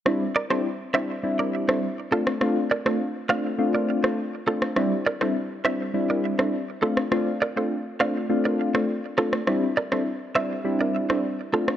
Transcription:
<<
  \new Staff \with { instrumentName = "Clean electric guitar" } { \time 4/4 \key c \mixolydian \tempo 4 = 102 r8 <bes' d''>16 <a' c''>16 r8 <c'' e''>16 r8 <bes' d''>16 r16 <a' c''>16 r8 <f' a'>16 r16 | r8 <bes' d''>16 <a' c''>16 r8 <d'' f''>16 r8 <bes' d''>16 r16 <a' c''>16 r8 <f' a'>16 r16 | r8 <bes' d''>16 <a' c''>16 r8 <c'' e''>16 r8 <bes' d''>16 r16 <a' c''>16 r8 <f' a'>16 r16 | r8 <bes' d''>16 <a' c''>16 r8 <d'' f''>16 r8 <bes' d''>16 r16 <a' c''>16 r8 <f' a'>16 r16 |
r8 <bes' d''>16 <a' c''>16 r8 <c'' e''>16 r8 <bes' d''>16 r16 <a' c''>16 r8 <f' a'>16 r16 | }
  \new Staff \with { instrumentName = "Synth keys" } { \time 4/4 \key c \mixolydian <g c' d' e'>16 r8 <g c' d' e'>16 r8 <g c' d' e'>16 r16 <g c' d' e'>8. <g c' d' e'>16 r8 <a c' d' f'>16 r16 | <a c' d' f'>16 r8 <a c' d' f'>16 r8 <a c' d' f'>16 r16 <a c' d' f'>8. <a c' d' f'>16 r8 <a c' d' f'>16 r16 | <g c' d' e'>16 r8 <g c' d' e'>16 r8 <g c' d' e'>16 r16 <g c' d' e'>8. <g c' d' e'>16 r8 <a c' d' f'>16 r16 | <a c' d' f'>16 r8 <a c' d' f'>16 r8 <a c' d' f'>16 r16 <a c' d' f'>8. <a c' d' f'>16 r8 <a c' d' f'>16 r16 |
<g c' d' e'>16 r8 <g c' d' e'>16 r8 <g c' d' e'>16 r16 <g c' d' e'>8. <g c' d' e'>16 r8 <a c' d' f'>16 r16 | }
  \new DrumStaff \with { instrumentName = "Drums" } \drummode { \time 4/4 ss8. ss16 r8 ss8 r8. ss16 r8. ss16 | ss8. ss16 r8 ss8 r8. ss16 r8. ss16 | ss8. ss16 r8 ss8 r8. ss16 r8. ss16 | ss4 r8 ss8 r8. ss16 r8 ss16 ss16 |
ss8. ss16 r8 ss8 r8. ss16 r8. ss16 | }
>>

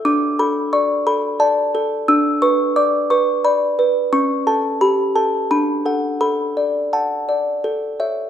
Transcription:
\new Staff \with { instrumentName = "Music box" } { \time 3/4 \key d \major \tempo 4 = 88 << { d'''8 b''8 cis'''8 b''8 a''4 | e'''8 cis'''8 d'''8 cis'''8 b''4 | cis'''8 a''8 b''8 a''8 b''4 | b''4 a''4 r4 | } \\ { d'8 a'8 d''8 a'8 d''8 a'8 | d'8 b'8 d''8 b'8 d''8 b'8 | cis'8 a'8 g'8 a'8 d'8 <a' fis''>8 | a'8 d''8 fis''8 d''8 a'8 <cis'' e''>8 | } >> }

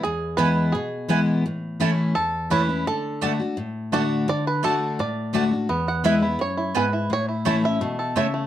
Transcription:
<<
  \new Staff \with { instrumentName = "Five-string banjo" } { \time 4/4 \key e \mixolydian \tempo 4 = 170 << { gis'4 b'4 gis'4. r8 | r2 a'4 b'4 | a'4. r4. fis'4 | d''8 b'8 a'4 d''4 r4 |
r8 fis''8 e''4 cis''4 b'4 | cis''4 r8 e''4. e''4 | } \\ { r1 | r1 | r1 | r1 |
b4. e'4 e'4 e'8 | r8 e'8 a4 a8 a'4 a8 | } >> }
  \new Staff \with { instrumentName = "Mandolin" } { \time 4/4 \key e \mixolydian r4 <b e' b' gis''>16 r4. r16 <b e' b' gis''>16 r8. | r4 <a e' cis'' a''>16 r4. r16 <a e' cis'' a''>16 r8. | r4 <a fis' d'' a''>16 r4. r16 <a fis' d'' a''>16 r8. | r4 <a fis' d'' a''>16 r4. r16 <a fis' d'' a''>16 r8. |
r4 <b e' b' gis''>16 r4. r16 <b e' b' gis''>16 r8. | r4 <a e' cis'' a''>16 r4. r16 <a e' cis'' a''>16 r8. | }
  \new Staff \with { instrumentName = "Steel-string acoustic guitar" } { \time 4/4 \key e \mixolydian << { r4 <e gis b e'>4 r4 <e gis b e'>4 | r4 <e a cis' e'>4 r4 <e a cis' e'>8 <cis' e'>8 | r4 <d a d' fis'>8 <d' fis'>8 r4 <d a d' fis'>4 | r4 <d a d' fis'>4 r4 <d a d' fis'>8 <d' fis'>8 |
r4 <e gis b e'>8 <b e'>8 r2 | r4 <e a cis' e'>8 <cis' e'>8 r2 | } \\ { e,2 b,2 | a,2 e,2 | d2 a,2 | d2 a,2 |
e,2 fis,4 gis,4 | a,2 b,4 cis4 | } >> }
>>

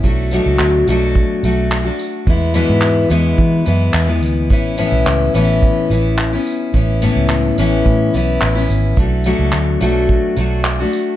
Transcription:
<<
  \new Staff \with { instrumentName = "Steel-string acoustic guitar" } { \time 4/4 \key a \major \tempo 4 = 107 <fis a d' fis'>8 <b, fis a d' fis'>4 <b, fis a d' fis'>4 <fis a d' fis'>8. <a d' fis'>8. | <e gis b e'>8 <e, b, e gis b e'>4 <e, b, e gis b e'>4 <e gis b e'>8. <e gis b e'>8. | <e b cis' e'>8 <a, e b cis' e'>4 <a, e b cis' e'>4 <e b cis' e'>8. <b cis' e'>8. | <e b cis' e'>8 <a, e b cis' e'>4 <a, e b cis' e'>4 <e b cis' e'>8. <b cis' e'>8. |
<fis a d' fis'>8 <b, fis a d' fis'>4 <b, fis a d' fis'>4 <fis a d' fis'>8. <a d' fis'>8. | }
  \new Staff \with { instrumentName = "Fingered electric bass" } { \clef bass \time 4/4 \key a \major b,,8. cis,16 d,8 b,,8. r16 b,,4 r8 | e,8. gis,8. e,8 e8 fis,8 e,8 d,8 | a,,8. b,,16 cis,8 a,,8. r16 a,,4 r8 | a,,8. cis,8. a,,8 a,8 b,,8 a,,8 gis,,8 |
b,,8. cis,16 d,8 b,,8. r16 b,,4 r8 | }
  \new DrumStaff \with { instrumentName = "Drums" } \drummode { \time 4/4 bd8 tamb8 hc8 tamb8 bd8 tamb8 hc8 tamb8 | bd8 tamb8 hc8 tamb8 bd8 tamb8 hc8 tamb8 | bd8 tamb8 hc8 tamb8 bd8 tamb8 hc8 tamb8 | bd8 tamb8 hc8 tamb8 bd8 tamb8 hc8 tamb8 |
bd8 tamb8 hc8 tamb8 bd8 tamb8 hc8 tamb8 | }
>>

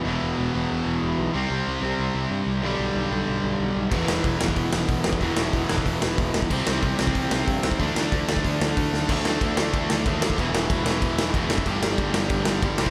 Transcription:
<<
  \new Staff \with { instrumentName = "Distorted electric guitar" } { \clef bass \time 4/4 \key g \major \tempo 4 = 186 <e, b, e>1 | <c g c'>1 | <g, d g>1 | <e, b, e>1 |
<e, b, e>1 | <c g c'>1 | <d a d'>1 | <d a d'>4. <d a d'>4. <d a d'>4 |
<e, b, e>4. <e, b, e>4. <e, b, e>4 | <g, d g>4. <g, d g>4. <g, d g>8 <c g c'>8 | }
  \new Staff \with { instrumentName = "Overdriven electric guitar" } { \clef bass \time 4/4 \key g \major <e, b, e>4. <e, b, e>2~ <e, b, e>8 | <c g c'>4. <c g c'>2~ <c g c'>8 | <g, d g>4. <g, d g>2~ <g, d g>8 | <e, b, e>4. <e, b, e>2~ <e, b, e>8 |
<e, b, e>4. <e, b, e>2~ <e, b, e>8 | <c g c'>4. <c g c'>2~ <c g c'>8 | <d a d'>4. <d a d'>2~ <d a d'>8 | r1 |
r1 | r1 | }
  \new Staff \with { instrumentName = "Overdriven electric guitar" } { \clef bass \time 4/4 \key g \major <e, b, e>4. <e, b, e>2~ <e, b, e>8 | <c g c'>4. <c g c'>2~ <c g c'>8 | <g, d g>4. <g, d g>2~ <g, d g>8 | <e, b, e>4. <e, b, e>2~ <e, b, e>8 |
<e, b, e>4. <e, b, e>2~ <e, b, e>8 | <c g c'>4. <c g c'>2~ <c g c'>8 | <d a d'>4. <d a d'>2~ <d a d'>8 | <d a d'>2.~ <d a d'>8 <d a d'>8 |
<e, b, e>2.~ <e, b, e>8 <e, b, e>8 | <g, d g>2.~ <g, d g>8 <c g c'>8 | }
  \new Staff \with { instrumentName = "Picked electric bass" } { \clef bass \time 4/4 \key g \major e,,8 e,,8 e,,8 e,,8 e,,8 e,,8 e,,8 b,,8 | c,8 c,8 c,8 c,8 c,8 c,8 g,8 c,8 | b,,8 b,,8 b,,8 b,,8 b,,8 b,,8 b,,8 b,,8 | e,,8 e,,8 e,,8 e,,8 e,,8 e,,8 b,,8 e,,8 |
e,,8 e,,8 e,,8 e,,8 e,,8 e,,8 e,,8 e,,8 | c,8 c,8 c,8 c,8 c,8 c,8 g,8 c,8 | d,8 d,8 d,8 d,8 d,8 d,8 d,8 d,8 | d,4 d,8 d,8 d,8 d,8 ees,4 |
e,,4 e,,8 e,,8 e,,4 e,,8 fis,,8 | g,,4 g,,8 g,,8 g,,8 g,,8 g,,8 c,8 | }
  \new DrumStaff \with { instrumentName = "Drums" } \drummode { \time 4/4 r4 r4 r4 r4 | r4 r4 r4 r4 | r4 r4 r4 r4 | <cymc bd>8 sn8 <hho bd>8 sn16 bd16 <hho bd>8 sn8 <hho bd>8 sn16 bd16 |
<hho bd>8 sn8 <hho bd>8 sn16 bd16 <hho bd>8 sn8 <hho bd>8 sn16 bd16 | <cymc bd>8 sn8 <hho bd>8 sn16 bd16 <hho bd>8 sn8 <hho bd>8 sn16 bd16 | <hho bd>8 sn8 <hho bd>8 sn16 bd16 <hho bd>8 sn8 <hho bd>8 sn8 | <cymc bd>8 sn8 <cymc bd>8 sn8 <cymc bd>8 sn8 <cymc bd>8 sn16 bd16 |
<cymc bd>8 sn8 <cymc bd>8 sn8 <cymc bd>8 sn8 <cymc bd>8 sn16 bd16 | <cymc bd>8 sn8 <cymc bd>8 sn8 <cymc bd>8 sn8 <cymc bd>8 sn16 bd16 | }
>>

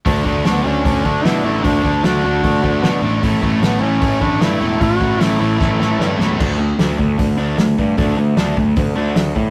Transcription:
<<
  \new Staff \with { instrumentName = "Duduk" } { \time 4/4 \key d \major \tempo 4 = 152 r4 b8 cis'4 d'8 e'4 | d'4 fis'2~ fis'8 r8 | r4 b8 cis'4 d'8 e'4 | fis'4 e'2~ e'8 r8 |
r1 | r1 | }
  \new Staff \with { instrumentName = "Distorted electric guitar" } { \time 4/4 \key d \major <d a d'>8 <d a d'>8 <d a d'>8 <d a d'>8 <d a d'>8 <d a d'>8 <d a d'>8 <d a d'>8 | <d a d'>8 <d a d'>8 <d a d'>8 <d a d'>8 <d a d'>8 <d a d'>8 <d a d'>8 <d a d'>8 | <a, e a>8 <a, e a>8 <a, e a>8 <a, e a>8 <a, e a>8 <a, e a>8 <a, e a>8 <a, e a>8 | <a, e a>8 <a, e a>8 <a, e a>8 <a, e a>8 <a, e a>8 <a, e a>8 <a, e a>8 <a, e a>8 |
<d a d'>8 <d a>8 <d a d'>8 <d a>8 <d a>8 <d a d'>8 <d a>8 <d a>8 | <d a d'>8 <d a>8 <d a d'>8 <d a>8 <d a>8 <d a d'>8 <d a>8 <d a>8 | }
  \new Staff \with { instrumentName = "Overdriven electric guitar" } { \clef bass \time 4/4 \key d \major <d a d'>8 <d a d'>8 <d a d'>8 <d a d'>8 <d a d'>8 <d a d'>8 <d a d'>8 <d a d'>8 | <d a d'>8 <d a d'>8 <d a d'>8 <d a d'>8 <d a d'>8 <d a d'>8 <d a d'>8 <d a d'>8 | <a, e a>8 <a, e a>8 <a, e a>8 <a, e a>8 <a, e a>8 <a, e a>8 <a, e a>8 <a, e a>8 | <a, e a>8 <a, e a>8 <a, e a>8 <a, e a>8 <a, e a>8 <a, e a>8 <a, e a>8 <a, e a>8 |
r1 | r1 | }
  \new Staff \with { instrumentName = "Picked electric bass" } { \clef bass \time 4/4 \key d \major d,8 d,8 d,8 d,8 d,8 d,8 b,8 a,,8 | d,8 d,8 d,8 d,8 d,8 d,8 b,8 a,,8 | a,,8 a,,8 a,,8 a,,8 a,,8 a,,8 g,8 e,,8 | a,,8 a,,8 a,,8 a,,8 a,,8 a,,8 g,8 e,,8 |
d,4 d,8 d,8 d,8 d,8 d,8 g,8 | d,8 d,8 d,8 d,8 d,8 d,8 d,8 a,8 | }
  \new DrumStaff \with { instrumentName = "Drums" } \drummode { \time 4/4 <hho bd>8 bd8 <hho sn>4 <hho bd>8 bd8 <hho sn>4 | <hho bd>8 bd8 <hho sn>4 <hho bd>8 bd8 <hho sn>4 | <hho bd>8 bd8 <hho sn>4 <hho bd>8 bd8 <hho sn>4 | <hho bd>8 bd8 <hho sn>4 <bd sn>8 sn8 sn8 sn8 |
<cymc bd>4 <hho sn>8 bd8 <hho bd>4 <hho sn>8 bd8 | <hho bd>4 <hho sn>8 bd8 <hho bd>4 <hho sn>8 bd8 | }
>>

